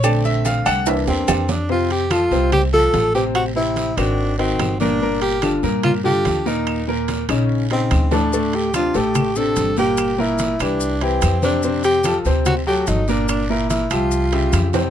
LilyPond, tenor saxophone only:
\new Staff \with { instrumentName = "Tenor saxophone" } { \time 4/4 \key f \major \tempo 4 = 145 r2 r8 c'4 d'8 | f'8 g'8 f'4 g'8 a'4 g'8 | ges'8 e'4 d'4 c'4 d'8~ | d'8 g'4 r8 f'8 g'4 ees'8~ |
ees'8 r2 c'4 d'8~ | d'8 g'8 f'8 g'4 a'4 g'8~ | g'8 e'4 d'4 c'4 d'8~ | d'8 g'4 r8 fis'8 g'8 ees'8 d'8 |
d'8 e'8 e'8 f'2 r8 | }